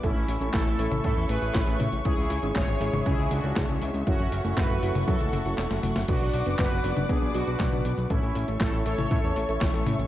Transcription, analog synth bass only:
\new Staff \with { instrumentName = "Analog synth bass" } { \clef bass \time 4/4 \key a \major \tempo 4 = 119 a,,16 a,,16 a,,16 a,,16 a,,16 a,,16 a,,16 a,,16 a,16 e,16 a,,16 a,,16 a,,16 a,,16 a,16 a,,16 | cis,16 cis,16 cis,16 gis,,16 gis,,16 gis,,16 gis,,16 gis,,16 cis,16 cis,16 cis,16 cis,16 cis,16 cis,16 cis,16 cis,16 | fis,,16 fis,,16 fis,,16 fis,,16 fis,,16 fis,,16 fis,,16 fis,,16 fis,16 cis,16 fis,,16 fis,,16 e,,16 fis,,16 fis,,16 fis,,16 | b,,16 b,,16 b,,16 fis,,16 fis,,16 fis,,16 fis,,16 fis,,16 b,,16 b,,16 b,,16 b,,16 b,,16 b,,16 b,,16 b,,16 |
a,,16 a,,16 a,,16 a,,16 a,,16 a,,16 a,,16 a,,16 a,16 e,16 a,,16 a,,16 a,,16 a,,16 a,16 a,,16 | }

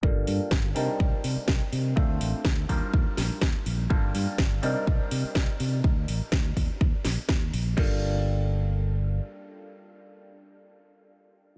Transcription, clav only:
\new Staff \with { instrumentName = "Clav" } { \time 4/4 \key g \minor \tempo 4 = 124 <g bes d' f' a'>4. <g c' d' ees' bes'>2~ <g c' d' ees' bes'>8 | <a c' d' f' a'>4. <g d' ees' f' bes'>2~ <g d' ees' f' bes'>8 | <g bes d' f' a'>4. <g c' d' ees' bes'>2~ <g c' d' ees' bes'>8 | r1 |
<g bes d' f' a'>1~ | <g bes d' f' a'>1 | }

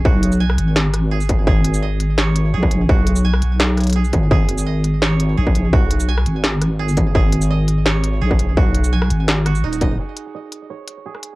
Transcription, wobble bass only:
\new Staff \with { instrumentName = "Wobble bass" } { \clef bass \time 4/4 \key gis \minor \tempo 4 = 169 b,,4. gis,,2~ gis,,8 | gis,,2. ais,,4 | b,,4. b,,2 gis,,8 | gis,,2. ais,,4 |
b,,4. gis,,2~ gis,,8 | gis,,2. ais,,4 | b,,4. gis,,4. dis,,4 | r1 | }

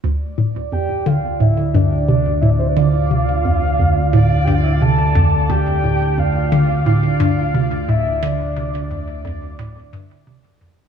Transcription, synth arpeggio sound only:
\new Staff \with { instrumentName = "Synth arpeggio sound" } { \clef bass \time 4/4 \key d \minor \tempo 4 = 88 d,8 a,8 f,8 d8 a,8 g,8 c8 a,8 | d8 c8 f,8 f,8 a,8 g,8 c8 f,8 | d,8 a,8 f,8 d8 a,8 g,8 c8 a,8 | d8 c8 f,8 f,8 a,8 g,8 c8 f,8 | }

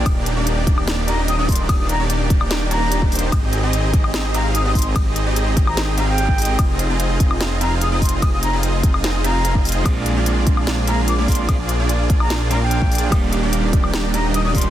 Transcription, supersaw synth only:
\new Staff \with { instrumentName = "Supersaw synth" } { \time 4/4 \key ees \major \tempo 4 = 147 <bes d' ees' g' d''>8. <bes d' ees' g' d''>8. <bes d' ees' g' d''>8 <bes d' ees' g' d''>8 <bes d' ees' g' ees''>8. <bes d' ees' g' d''>8. | <bes d' ees' g' d''>8. <bes d' ees' g' d''>8. <bes d' ees' g' d''>8 <bes d' ees' g' d''>8 <bes d' ees' g' d''>8. <bes d' ees' g' c''>8. | <c' ees' g' aes' ees''>8. <c' ees' g' aes' ees''>8. <c' ees' g' aes' ees''>8 <c' ees' g' aes' ees''>8 <c' ees' g' aes' f''>8. <c' ees' g' aes' ees''>8. | <c' ees' g' aes' ees''>8. <c' ees' g' aes' ees''>8. <c' ees' g' aes' ees''>8 <c' ees' g' aes' ees''>8 <c' ees' g' aes' f''>8. <c' ees' g' aes' ees''>8. |
<c' ees' f' aes' ees''>8. <c' ees' f' aes' ees''>8. <c' ees' f' aes' ees''>8 <c' ees' f' aes' ees''>8 <c' ees' f' aes' f''>8. <c' ees' f' aes' ees''>8. | <c' ees' f' aes' ees''>8. <c' ees' f' aes' ees''>8. <c' ees' f' aes' ees''>8 <c' ees' f' aes' ees''>8 <c' ees' f' aes' f''>8. <c' ees' f' aes' ees''>8. | <bes d' f' aes' d''>8. <bes d' f' aes' d''>8. <bes d' f' aes' d''>8 <bes d' f' aes' d''>8 <bes d' f' aes' f''>8. <bes d' f' aes' d''>8. | <bes d' f' aes' d''>8. <bes d' f' aes' d''>8. <bes d' f' aes' d''>8 <bes d' f' aes' d''>8 <bes d' f' aes' f''>8. <bes d' f' aes' d''>8. |
<bes d' ees' g' d''>8. <bes d' ees' g' d''>8. <bes d' ees' g' d''>8 <bes d' ees' g' d''>8 <bes d' ees' g' ees''>8. <bes d' ees' g' d''>8. | }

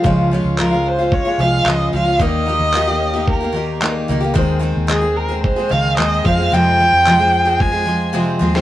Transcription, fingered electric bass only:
\new Staff \with { instrumentName = "Fingered electric bass" } { \clef bass \time 4/4 \key des \lydian \tempo 4 = 111 des,8. des,4. r16 c,8 des,8 des,8 | ees,8. ees,2~ ees,8. des,8 | ees,8. ees,4. r16 des,8 ees,8 f,8 | f,8. f,2~ f,8. ees,8 | }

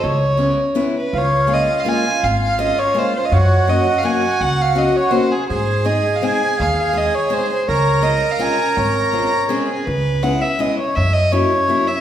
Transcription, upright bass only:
\new Staff \with { instrumentName = "Upright bass" } { \clef bass \time 3/4 \key cis \minor \tempo 4 = 165 cis,2 r4 | \key des \major des,2 r4 | aes,,2 r4 | ges,2 r4 |
des,2 r4 | aes,2 r4 | ees,2 r4 | des,2 r4 |
aes,,2 r4 | \key cis \minor cis,2 r4 | fis,2 r4 | }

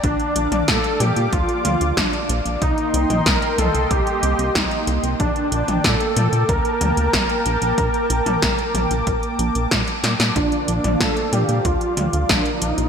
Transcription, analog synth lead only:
\new Staff \with { instrumentName = "Analog synth lead" } { \time 4/4 \key g \minor \tempo 4 = 93 d'4 a'8 g'8 f'4 d'8 r8 | ees'4 bes'8 a'8 g'4 ees'8 r8 | d'4 a'4 bes'2~ | bes'2. r4 |
d'4 a'8 g'8 f'4 d'8 ees'8 | }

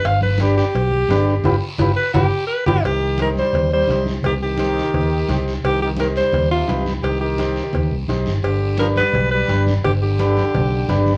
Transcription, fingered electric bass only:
\new Staff \with { instrumentName = "Fingered electric bass" } { \clef bass \time 4/4 \key c \minor \tempo 4 = 172 g,,2 b,,4 g,,4 | g,,8 r8 g,,8 r8 g,,8 r4 g,,8 | c,2 ees,4 c,4 | c,2 ees,4 c,4 |
c,2 ees,4 c,4 | c,2 ees,8 c,8 b,,8 g,,8 | g,,2 b,,4 g,,4 | g,,2 b,,4 g,,4 | }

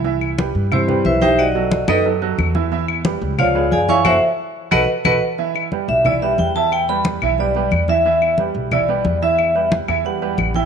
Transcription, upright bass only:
\new Staff \with { instrumentName = "Upright bass" } { \clef bass \time 4/4 \key e \minor \tempo 4 = 180 c,4. g,4. b,,4~ | b,,4. fis,4. e,4~ | e,4. cis,4. fis,4 | fis,,8 r4. b,,8 r8 b,,8 r8 |
r4. b,,4. e,4~ | e,4. b,,4. e,4~ | e,4. b,,4. e,4~ | e,4. e,4. a,,4 | }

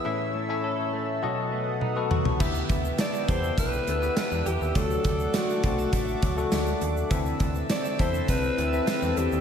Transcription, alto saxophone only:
\new Staff \with { instrumentName = "Alto saxophone" } { \time 4/4 \key b \minor \tempo 4 = 102 r1 | \key e \minor r4 d''8 c''8 b'4 b'8 g'8 | a'4 fis'8 fis'2 r8 | r4 d''8 c''8 b'4 b'8 g'8 | }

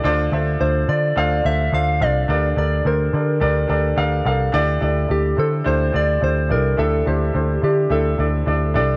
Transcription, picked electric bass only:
\new Staff \with { instrumentName = "Picked electric bass" } { \clef bass \time 4/4 \key a \phrygian \tempo 4 = 107 d,8 d,8 d,8 d8 d,8 d,8 d,8 c,8 | d,8 d,8 d,8 d8 d,8 d,8 d,8 c,8 | d,8 d,8 d,8 d8 d,8 d,8 d,8 c,8 | d,8 d,8 d,8 d8 d,8 d,8 d,8 c,8 | }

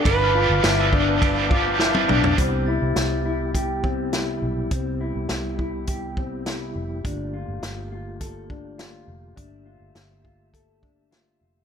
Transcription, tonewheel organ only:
<<
  \new Staff \with { instrumentName = "Tonewheel organ" } { \time 4/4 \key g \mixolydian \tempo 4 = 103 << { d'''1 | \key c \major g'1~ | g'1~ | g'1~ |
g'1 | } \\ { a''1 | e'1~ | e'1 | f'1 |
e''1 | } >> }
  \new Staff \with { instrumentName = "Tonewheel organ" } { \time 4/4 \key g \mixolydian <b' f''>1 | \key c \major <c g b>1~ | <c g b>1 | <d a bes>1~ |
<d a bes>1 | }
>>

